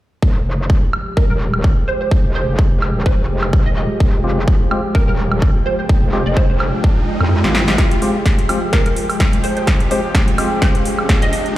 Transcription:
0.22 0.44 F1 medium
0.22 7.74 F3 medium
0.22 7.74 G#3 medium
0.22 11.57 F4 medium
0.22 7.74 G4 medium
0.22 kick loud
0.46 0.81 F1 medium
0.70 kick loud
0.91 11.57 G#3 medium
0.91 high woodblock medium
1.17 1.25 A#4 medium
1.17 kick loud
1.30 1.75 D#1 medium
1.30 1.37 A#4 medium
1.54 high woodblock medium
1.64 kick loud
1.88 1.96 C5 medium
2.01 2.08 C5 medium
2.08 11.57 G5 medium
2.08 kick loud
2.24 2.46 F1 medium
2.35 2.47 C5 medium
2.48 2.93 F1 medium
2.59 kick loud
2.82 high woodblock medium
2.95 3.28 D#1 medium
3.06 3.18 C5 medium
3.06 kick loud
3.30 3.64 F1 medium
3.43 high woodblock medium
3.53 kick loud
3.66 3.88 D#1 medium
3.66 3.73 D#5 medium
3.77 3.85 D#5 medium
4.00 4.22 F1 medium
4.00 kick loud
4.00 riser medium
4.24 4.59 F1 loud
4.24 4.39 G#3 medium
4.24 4.39 C4 medium
4.24 4.39 F4 medium
4.24 4.39 G4 medium
4.48 kick loud
4.71 4.81 G#3 medium
4.71 4.81 C4 medium
4.71 4.81 F4 medium
4.71 4.81 G4 medium
4.71 high woodblock medium
4.95 5.03 A#4 medium
4.95 kick loud
5.08 5.53 D#1 loud
5.08 5.15 A#4 medium
5.32 high woodblock medium
5.42 kick loud
5.66 5.74 C5 medium
5.79 5.86 C5 medium
5.89 kick loud
6.03 6.24 F1 medium
6.13 6.23 G#3 loud
6.13 6.23 C4 medium
6.13 6.23 F4 medium
6.13 6.23 G4 loud
6.26 6.71 F1 medium
6.26 6.35 D#5 medium
6.37 6.45 C5 medium
6.37 kick loud
6.50 6.57 C5 medium
6.60 high woodblock medium
6.84 kick loud
7.21 7.42 F2 medium
7.21 high woodblock medium
7.44 7.77 G#1 medium
7.44 7.57 G#3 medium
7.44 7.57 C4 medium
7.44 7.57 F4 medium
7.44 7.57 G4 medium
7.44 snare medium
7.55 snare medium
7.68 7.76 G#3 medium
7.68 7.76 C4 medium
7.68 7.76 F4 medium
7.68 7.76 G4 medium
7.68 snare medium
7.78 11.57 F3 medium
7.78 11.57 G#3 medium
7.78 11.57 G4 medium
7.78 kick loud
7.78 snare soft
7.78 closed hi-hat medium
7.78 riser medium
7.91 closed hi-hat medium
8.02 8.17 G#3 medium
8.02 8.17 C4 medium
8.02 8.17 F4 medium
8.02 8.17 G4 loud
8.02 open hi-hat loud
8.26 kick loud
8.26 snare soft
8.26 closed hi-hat medium
8.39 closed hi-hat medium
8.49 8.59 G#3 medium
8.49 8.59 C4 medium
8.49 8.59 F4 medium
8.49 8.59 G4 medium
8.49 open hi-hat loud
8.49 high woodblock medium
8.73 8.81 A#4 medium
8.73 kick loud
8.73 snare medium
8.73 closed hi-hat medium
8.86 8.93 A#4 medium
8.86 closed hi-hat medium
8.96 open hi-hat loud
9.10 open hi-hat medium
9.10 high woodblock medium
9.20 kick loud
9.20 snare medium
9.20 closed hi-hat medium
9.33 closed hi-hat medium
9.44 9.52 C5 medium
9.44 open hi-hat loud
9.57 9.64 C5 medium
9.57 closed hi-hat soft
9.67 kick loud
9.67 snare medium
9.67 closed hi-hat medium
9.80 closed hi-hat medium
9.91 10.01 G#3 medium
9.91 10.01 C4 medium
9.91 10.01 F4 medium
9.91 10.01 G4 loud
9.91 10.03 C5 medium
9.91 open hi-hat loud
10.15 kick loud
10.15 snare medium
10.15 closed hi-hat medium
10.28 closed hi-hat medium
10.38 11.57 G#3 loud
10.38 11.57 C4 medium
10.38 11.57 F4 medium
10.38 11.57 G4 loud
10.38 open hi-hat loud
10.38 high woodblock medium
10.62 10.74 C5 medium
10.62 kick loud
10.62 snare medium
10.62 closed hi-hat medium
10.75 closed hi-hat medium
10.85 open hi-hat loud
10.99 high woodblock medium
11.09 kick loud
11.09 snare medium
11.09 closed hi-hat medium
11.22 11.29 D#5 medium
11.22 closed hi-hat medium
11.33 11.41 D#5 medium
11.33 open hi-hat loud
11.46 closed hi-hat soft

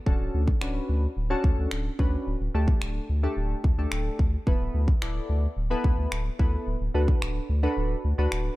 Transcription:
0.06 0.15 D1 loud
0.06 0.39 C#4 medium
0.06 0.40 D4 medium
0.06 0.40 F#4 medium
0.06 0.40 A4 medium
0.06 kick loud
0.20 0.29 D1 medium
0.34 0.52 D2 loud
0.48 kick medium
0.61 0.80 D1 loud
0.61 1.03 C#4 medium
0.61 1.03 D4 medium
0.61 1.03 F#4 medium
0.61 1.03 B4 medium
0.61 finger snap loud
0.89 1.07 D2 loud
1.17 1.35 D1 loud
1.30 1.72 C#4 loud
1.30 1.72 D4 medium
1.30 1.72 F#4 medium
1.30 1.72 A4 loud
1.44 1.53 D2 loud
1.44 kick medium
1.58 1.67 D2 loud
1.71 1.90 D1 medium
1.71 finger snap loud
1.99 2.17 D2 medium
1.99 2.27 C#4 medium
1.99 2.27 D4 medium
1.99 2.27 F#4 medium
1.99 2.27 B4 medium
1.99 kick medium
2.27 2.36 D1 loud
2.41 2.49 D1 medium
2.54 2.72 D2 medium
2.54 2.96 A3 medium
2.54 2.96 D4 medium
2.54 2.96 G4 medium
2.54 2.96 A4 medium
2.68 kick loud
2.82 3.00 D1 loud
2.82 finger snap loud
3.09 3.27 D2 medium
3.23 3.56 A3 medium
3.23 3.56 D4 medium
3.23 3.56 G4 medium
3.23 3.56 A4 medium
3.37 3.55 D1 loud
3.64 3.73 D2 loud
3.64 kick medium
3.78 3.87 D2 loud
3.78 4.19 A3 medium
3.78 4.20 D4 medium
3.78 4.20 G4 medium
3.78 4.20 A4 medium
3.92 4.10 D1 loud
3.92 finger snap loud
4.19 4.37 D2 loud
4.19 kick medium
4.47 4.56 D1 loud
4.47 4.80 B3 medium
4.47 4.80 E4 medium
4.47 4.80 A4 medium
4.47 4.80 B4 medium
4.47 kick loud
4.61 4.70 D1 medium
4.74 4.92 D2 loud
4.88 kick medium
5.02 5.20 D1 loud
5.02 5.43 B3 medium
5.02 5.43 E4 medium
5.02 5.43 A4 medium
5.02 5.43 D5 medium
5.02 finger snap loud
5.29 5.47 D2 medium
5.57 5.75 D1 loud
5.70 6.12 B3 loud
5.70 6.12 E4 medium
5.70 6.12 A4 medium
5.70 6.12 B4 loud
5.84 5.93 D2 medium
5.84 kick medium
5.98 6.07 D2 medium
6.12 6.30 D1 loud
6.12 finger snap loud
6.39 6.57 D2 medium
6.39 6.67 B3 medium
6.39 6.67 E4 medium
6.39 6.67 A4 medium
6.39 6.67 B4 medium
6.39 kick medium
6.67 6.76 D1 loud
6.81 6.90 D1 loud
6.94 7.12 D2 loud
6.94 7.36 D4 medium
6.94 7.36 F#4 medium
6.94 7.36 A4 medium
6.94 7.36 B4 medium
7.08 kick medium
7.22 7.40 D1 loud
7.22 finger snap loud
7.49 7.67 D2 loud
7.63 7.96 D4 medium
7.63 7.96 F#4 medium
7.63 7.96 A4 medium
7.63 7.96 B4 loud
7.77 7.95 D1 loud
8.04 8.13 D2 medium
8.18 8.27 D2 loud
8.18 8.56 D4 medium
8.18 8.56 F#4 medium
8.18 8.56 A4 medium
8.18 8.56 B4 medium
8.32 8.50 D1 loud
8.32 finger snap loud

